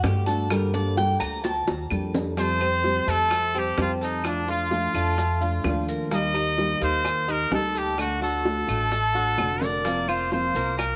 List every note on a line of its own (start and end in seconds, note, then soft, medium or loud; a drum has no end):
0.03 1.14 G2 loud
0.03 0.26 D3 soft
0.03 0.27 A3 medium
0.03 0.26 D4 medium
0.03 0.26 F#4 medium
0.03 0.27 G4 medium
0.03 high bongo medium
0.03 low bongo medium
0.03 maracas soft
0.26 0.51 A3 medium
0.26 0.50 D4 medium
0.26 0.50 F#4 medium
0.26 0.50 A4 medium
0.26 maracas medium
0.50 0.73 D3 medium
0.50 0.74 G3 medium
0.50 0.73 A#3 medium
0.50 0.73 D4 medium
0.50 0.72 A4 medium
0.50 0.73 A#4 medium
0.50 high bongo medium
0.50 claves medium
0.50 maracas medium
0.74 0.97 G3 medium
0.74 0.97 A#3 medium
0.74 0.97 D4 medium
0.74 0.97 A4 medium
0.74 0.97 D5 loud
0.74 maracas soft
0.97 1.43 G3 medium
0.97 1.43 A#3 soft
0.97 1.43 D4 medium
0.97 1.44 A4 medium
0.97 1.20 G5 loud
0.97 high bongo medium
0.97 maracas soft
1.20 1.64 D2 medium
1.20 1.43 A#5 loud
1.20 high bongo soft
1.20 claves medium
1.20 maracas medium
1.44 2.10 A5 medium
1.44 muted nylon-string guitar stroke medium
1.44 high bongo medium
1.44 maracas medium
1.68 1.90 D#2 medium
1.68 high bongo medium
1.68 maracas soft
1.90 3.02 F2 loud
1.90 2.13 G3 soft
1.90 2.13 A#3 medium
1.90 2.13 D4 medium
1.90 2.12 A4 medium
1.90 claves medium
1.90 maracas soft
2.13 2.36 G3 medium
2.13 2.37 A#3 medium
2.13 2.37 D4 medium
2.13 2.36 A4 medium
2.13 low bongo loud
2.13 maracas medium
2.36 2.60 F3 medium
2.36 2.60 G3 medium
2.36 2.61 A3 medium
2.36 2.60 C4 medium
2.36 2.60 G4 medium
2.36 3.11 C5 loud
2.36 high bongo medium
2.36 maracas medium
2.61 2.83 G3 soft
2.61 3.06 C4 medium
2.61 2.84 C4 soft
2.61 2.84 G4 soft
2.61 claves medium
2.61 maracas soft
2.84 3.07 F3 medium
2.84 3.07 G3 medium
2.84 3.07 C4 medium
2.84 3.07 G4 medium
2.84 high bongo medium
2.84 maracas soft
3.07 3.74 F2 medium
3.07 3.31 G3 soft
3.07 3.53 A3 medium
3.07 3.31 C4 soft
3.07 3.31 G4 soft
3.07 3.60 A4 loud
3.07 maracas medium
3.31 muted nylon-string guitar stroke medium
3.31 high bongo medium
3.31 claves medium
3.31 maracas medium
3.54 3.77 G3 soft
3.54 4.00 C4 medium
3.54 3.78 C4 soft
3.54 3.77 G4 medium
3.54 maracas soft
3.59 3.80 G4 loud
3.77 4.88 F2 medium
3.77 4.23 F3 medium
3.77 4.24 G3 medium
3.77 4.24 C4 medium
3.77 4.24 G4 medium
3.77 high bongo medium
3.77 low bongo medium
3.77 maracas soft
3.82 3.91 F4 medium
4.01 4.28 D#4 medium
4.01 4.47 A4 medium
4.01 maracas medium
4.24 4.47 F3 medium
4.24 4.47 A3 medium
4.24 4.47 D4 medium
4.24 4.49 D4 loud
4.24 4.46 F4 medium
4.24 high bongo medium
4.24 claves medium
4.24 maracas medium
4.48 4.70 A3 soft
4.48 4.71 D4 soft
4.48 4.70 F4 soft
4.48 4.94 F4 medium
4.48 5.85 F4 loud
4.48 high bongo soft
4.48 maracas soft
4.70 4.93 F3 medium
4.70 4.94 A3 medium
4.70 4.94 D4 medium
4.70 4.93 F4 medium
4.70 high bongo medium
4.70 maracas soft
4.94 5.61 F2 medium
4.94 5.40 A3 medium
4.94 5.18 A3 soft
4.94 5.18 D4 medium
4.94 5.17 F4 soft
4.94 high bongo soft
4.94 claves medium
4.94 maracas medium
5.18 muted nylon-string guitar stroke medium
5.18 high bongo medium
5.18 maracas medium
5.41 5.64 A3 soft
5.41 5.64 D4 soft
5.41 5.64 F4 medium
5.41 5.87 F4 medium
5.41 high bongo soft
5.41 maracas soft
5.64 6.75 D#2 medium
5.64 6.11 F3 medium
5.64 6.11 A3 medium
5.64 6.12 D4 medium
5.64 6.12 F4 medium
5.64 high bongo medium
5.64 low bongo medium
5.64 claves medium
5.64 maracas soft
5.88 6.11 A#4 medium
5.88 maracas medium
6.11 6.34 D#3 medium
6.11 6.34 G3 medium
6.11 6.34 A#3 medium
6.11 6.34 D#4 medium
6.11 6.33 G4 medium
6.11 6.79 D#5 loud
6.11 high bongo medium
6.11 maracas medium
6.34 6.57 A#3 soft
6.34 6.80 D#4 medium
6.34 6.57 D#4 soft
6.34 6.57 G4 medium
6.34 claves medium
6.34 maracas soft
6.57 6.80 D#3 medium
6.57 6.80 G3 medium
6.57 6.81 A#3 medium
6.57 6.81 D#4 medium
6.57 6.80 G4 medium
6.57 high bongo medium
6.57 maracas soft
6.81 7.48 D#2 medium
6.81 7.27 A#3 medium
6.81 7.04 A#3 soft
6.81 7.04 D#4 soft
6.81 7.04 G4 medium
6.81 7.33 C5 loud
6.81 maracas medium
7.04 muted nylon-string guitar stroke medium
7.04 high bongo medium
7.04 claves medium
7.04 maracas medium
7.28 7.51 A#3 soft
7.28 7.74 D#4 medium
7.28 7.51 D#4 soft
7.28 7.51 G4 soft
7.28 7.53 A#4 loud
7.28 maracas soft
7.51 8.62 D2 medium
7.51 7.97 G3 medium
7.51 7.98 A#3 medium
7.51 7.98 D#4 medium
7.51 7.98 G4 medium
7.51 7.79 A4 medium
7.51 high bongo medium
7.51 low bongo medium
7.51 maracas soft
7.75 8.00 G4 medium
7.75 8.20 A4 medium
7.75 maracas medium
7.98 8.21 D3 medium
7.98 8.21 A3 medium
7.98 8.21 D4 medium
7.98 8.21 F#4 medium
7.98 high bongo medium
7.98 claves medium
7.98 maracas medium
8.22 8.43 A3 soft
8.22 8.44 D4 soft
8.22 8.44 F#4 soft
8.22 8.67 F#4 medium
8.22 9.65 A4 loud
8.22 high bongo soft
8.22 maracas soft
8.44 8.67 D3 medium
8.44 8.67 A3 medium
8.44 8.67 D4 medium
8.44 8.66 F#4 medium
8.44 high bongo medium
8.44 maracas soft
8.67 9.34 A1 medium
8.67 9.14 A3 medium
8.67 8.91 A3 soft
8.67 8.91 D4 soft
8.67 8.90 F#4 soft
8.67 high bongo soft
8.67 claves medium
8.67 maracas medium
8.91 muted nylon-string guitar stroke medium
8.91 high bongo medium
8.91 maracas medium
9.15 9.38 A3 soft
9.15 9.38 D4 soft
9.15 9.38 F#4 soft
9.15 9.60 F#4 medium
9.15 high bongo soft
9.15 maracas soft
9.38 10.49 F1 medium
9.38 9.84 D3 medium
9.38 9.85 A3 medium
9.38 9.85 D4 medium
9.38 9.85 F#4 medium
9.38 high bongo medium
9.38 claves medium
9.38 maracas soft
9.61 9.84 A#4 medium
9.61 10.10 D5 loud
9.61 low bongo medium
9.61 maracas medium
9.85 10.08 F3 medium
9.85 10.08 A#3 medium
9.85 10.08 C4 medium
9.85 10.07 F4 medium
9.85 high bongo medium
9.85 maracas medium
10.08 10.32 A#3 soft
10.08 10.31 C4 soft
10.08 10.31 F4 medium
10.08 10.54 F4 medium
10.08 10.32 C5 medium
10.08 claves medium
10.08 maracas soft
10.32 10.54 F3 medium
10.32 10.55 A#3 medium
10.32 10.55 C4 medium
10.32 10.55 F4 medium
10.32 10.76 C5 medium
10.32 high bongo medium
10.32 maracas soft
10.55 10.96 C2 medium
10.55 10.96 A#3 medium
10.55 10.77 A#3 soft
10.55 10.78 C4 soft
10.55 10.78 F4 medium
10.55 maracas medium
10.78 10.96 A#4 medium
10.78 muted nylon-string guitar stroke medium
10.78 high bongo medium
10.78 claves medium
10.78 maracas medium